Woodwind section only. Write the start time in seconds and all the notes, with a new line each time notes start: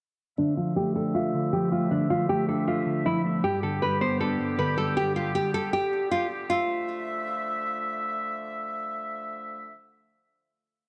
0.38 D3 F3 A3 E5
3.44 D3 G3 B3 G4
6.50 D3 F3 A3 E5